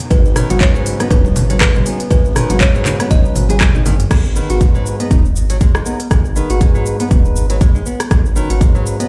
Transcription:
Already playing: analog synth pad D#4
0.00 closed hi-hat, shaker
0.11 analog synth bass G#1, analog synth pad C#3 B3, nylon-string guitar G#3, kalimba B4, kick, closed hi-hat, muted conga, shaker
0.25 shaker
0.36 nylon-string guitar D#3, tonewheel organ F#3 C#4 D#4 B4, cross-stick, open hi-hat, mid tom, shaker
0.50 analog synth bass G#1, nylon-string guitar F#4, closed hi-hat, muted conga, high conga, shaker
0.61 nylon-string guitar G#3, kalimba C#5, kick, clap, closed hi-hat, shaker
0.75 analog synth bass G#2, nylon-string guitar F#3, shaker
0.86 open hi-hat, shaker
0.99 tonewheel organ F#3 C#4 D#4 D#5, nylon-string guitar B3, cross-stick, closed hi-hat, muted conga, shaker
1.10 analog synth bass D#1, nylon-string guitar D#4, kalimba B4, kick, closed hi-hat, low conga, shaker
1.25 high conga, shaker
1.35 analog synth bass G#1, open hi-hat, mid tom, muted conga, low conga, shaker
1.50 nylon-string guitar F#3, closed hi-hat, high conga, shaker
1.60 nylon-string guitar G#3, kalimba B4, kick, cross-stick, clap, closed hi-hat, low conga, shaker
1.74 analog synth bass G#1, nylon-string guitar G#3, mid tom, muted conga, high conga, shaker
1.86 tonewheel organ F#3 C#4 D#4 G#4, nylon-string guitar B3, open hi-hat, shaker
2.00 closed hi-hat, shaker
2.11 analog synth bass G#1, nylon-string guitar G#3, kalimba B4, kick, closed hi-hat, muted conga, shaker
2.25 shaker
2.36 nylon-string guitar D#3, tonewheel organ F#3 C#4 D#4 B4, cross-stick, open hi-hat, mid tom, shaker
2.50 analog synth bass G#1, nylon-string guitar F#4, closed hi-hat, muted conga, high conga, shaker
2.60 nylon-string guitar G#3, kalimba C#5, kick, clap, closed hi-hat, shaker
2.75 analog synth bass G#2, nylon-string guitar F#3, shaker
2.86 clap, open hi-hat, low conga, shaker
3.00 tonewheel organ F#3 C#4 D#4 B4, nylon-string guitar B3, cross-stick, closed hi-hat, muted conga, shaker
3.11 analog synth bass D#1, nylon-string guitar D#4, kalimba D#5, kick, closed hi-hat, high conga, shaker
3.25 shaker
3.36 analog synth bass G#1, open hi-hat, mid tom, high tom, muted conga, high conga, shaker
3.49 tonewheel organ F#3 C#4 D#4 B4, nylon-string guitar G#4, closed hi-hat, high conga, shaker
3.61 nylon-string guitar G#3, kick, cross-stick, clap, closed hi-hat, mid tom, high conga, low conga, shaker
3.75 analog synth bass G#1, nylon-string guitar D#4, mid tom, muted conga, shaker
3.86 nylon-string guitar D#3, mid tom, open hi-hat, high conga, low conga, shaker
4.00 closed hi-hat, mid tom, shaker
4.11 analog synth bass G#1, nylon-string guitar G#3, kick, cross-stick, closed hi-hat, crash, shaker
4.25 shaker
4.36 nylon-string guitar D#3, tonewheel organ G#3 B3 D#4 B4, shaker
4.50 analog synth bass G#1, nylon-string guitar F#4, closed hi-hat, shaker
4.61 nylon-string guitar G#3, kick, closed hi-hat, shaker
4.75 analog synth bass G#2, nylon-string guitar F#3, shaker
4.86 shaker
5.00 tonewheel organ G#3 B3 D#4 D#5, nylon-string guitar B3, closed hi-hat, shaker
5.11 analog synth bass D#1, nylon-string guitar D#4, kick, closed hi-hat, shaker
5.25 shaker
5.36 analog synth bass G#1, shaker
5.50 nylon-string guitar F#3, closed hi-hat, shaker
5.61 nylon-string guitar G#3, kick, closed hi-hat, shaker
5.75 analog synth bass G#1, nylon-string guitar G#3, cross-stick, shaker
5.86 tonewheel organ G#3 B3 D#4 A#4, nylon-string guitar B3, shaker
6.00 closed hi-hat, shaker
6.11 analog synth bass G#1, nylon-string guitar G#3, kick, cross-stick, closed hi-hat, shaker
6.25 shaker
6.36 nylon-string guitar D#3, tonewheel organ G#3 B3 D#4 B4, shaker
6.50 analog synth bass G#1, nylon-string guitar F#4, closed hi-hat, shaker
6.61 nylon-string guitar G#3, kick, closed hi-hat, shaker
6.75 analog synth bass G#2, nylon-string guitar F#3, shaker
6.86 shaker
7.00 tonewheel organ G#3 B3 D#4 B4, nylon-string guitar B3, closed hi-hat, shaker
7.11 analog synth bass D#1, nylon-string guitar D#4, kick, closed hi-hat, shaker
7.25 shaker
7.36 analog synth bass G#1, shaker
7.50 nylon-string guitar F#3, tonewheel organ G#3 B3 D#4 B4, closed hi-hat, shaker
7.61 nylon-string guitar G#3, kick, closed hi-hat, shaker
7.75 analog synth bass G#1, nylon-string guitar G#3, shaker
7.86 nylon-string guitar B3, shaker
8.00 cross-stick, closed hi-hat, shaker
8.11 analog synth bass G#1, nylon-string guitar G#3, kick, cross-stick, closed hi-hat, shaker
8.25 shaker
8.36 nylon-string guitar D#3, tonewheel organ F#3 C#4 D#4 B4, shaker
8.50 analog synth bass G#1, nylon-string guitar F#4, closed hi-hat, shaker
8.61 nylon-string guitar G#3, kick, closed hi-hat, shaker
8.75 analog synth bass G#2, nylon-string guitar F#3, shaker
8.86 shaker
9.00 tonewheel organ F#3 C#4 D#4 D#5, nylon-string guitar B3, closed hi-hat, shaker

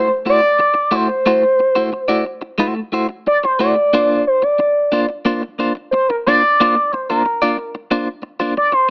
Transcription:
Already playing: analog synth lead C5
0.09 muted clean electric guitar stroke
0.25 clean electric guitar A3 E4 F#4 C5
0.30 analog synth lead D5
0.59 muted clean electric guitar stroke
0.74 muted clean electric guitar stroke
0.91 clean electric guitar A3 E4 F#4 C5, analog synth lead C5
1.09 muted clean electric guitar stroke
1.26 clean electric guitar A3 E4 F#4 C5
1.43 muted clean electric guitar stroke
1.59 muted clean electric guitar stroke
1.75 clean electric guitar A3 E4 F#4 C5
1.92 muted clean electric guitar stroke
2.08 clean electric guitar A3 E4 F#4 D5
2.25 muted clean electric guitar stroke
2.42 muted clean electric guitar stroke
2.58 clean electric guitar A3 E4 F#4 C5
2.75 muted clean electric guitar stroke
2.92 clean electric guitar A3 E4 F#4 C5
3.09 muted clean electric guitar stroke
3.27 analog synth lead D5, muted clean electric guitar stroke
3.44 analog synth lead C5, muted clean electric guitar stroke
3.59 clean electric guitar A3 E4 F#4 C5, analog synth lead D5
3.76 muted clean electric guitar stroke
3.93 clean electric guitar A#3 D4 F4 C5
4.27 analog synth lead C5
4.42 analog synth lead D5, muted clean electric guitar stroke
4.59 muted clean electric guitar stroke
4.92 clean electric guitar A#3 D4 F4 C5
5.10 muted clean electric guitar stroke
5.25 clean electric guitar A#3 D4 F4 C5
5.43 muted clean electric guitar stroke
5.59 clean electric guitar A#3 D4 F4 C5
5.75 muted clean electric guitar stroke
5.91 analog synth lead C5, muted clean electric guitar stroke
6.08 analog synth lead A#4, muted clean electric guitar stroke
6.26 clean electric guitar A#3 D4 F4 C5, analog synth lead D5
6.44 muted clean electric guitar stroke
6.60 clean electric guitar A#3 D4 F4 C5
6.76 muted clean electric guitar stroke
6.92 analog synth lead C5, muted clean electric guitar stroke
7.09 clean electric guitar A#3 D4 F4 C5, analog synth lead A#4
7.25 muted clean electric guitar stroke
7.42 clean electric guitar A#3 D4 F4 D5
7.58 muted clean electric guitar stroke
7.75 muted clean electric guitar stroke
7.91 clean electric guitar A#3 D4 F4 C5
8.22 muted clean electric guitar stroke
8.40 clean electric guitar A#3 D4 F4 C5
8.57 analog synth lead D5, muted clean electric guitar stroke
8.72 analog synth lead C5, muted clean electric guitar stroke

